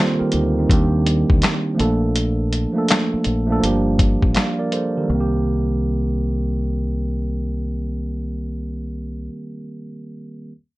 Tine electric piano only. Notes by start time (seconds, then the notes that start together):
Already playing: D#3 G3 A#3 C4 F4 G4 A4 C5
0.19 G4 A#4
0.33 D#4 G4
0.58 C4 D#4
0.68 D#3 G3 A#3
0.72 D4 G4
1.75 F3 A3 A#3
1.79 D4 A4
2.72 F3 A3 A#3
2.77 D4 A4
3.46 F3 A3 A#3
3.51 D4 A4
3.60 F3 G3 A#3
3.64 D4 G4
4.35 D5 F5
4.59 A#4 D5
4.73 A4 C5
4.97 D#3 G4 A#4
5.03 G3
5.09 A#3
5.15 C4
5.21 G4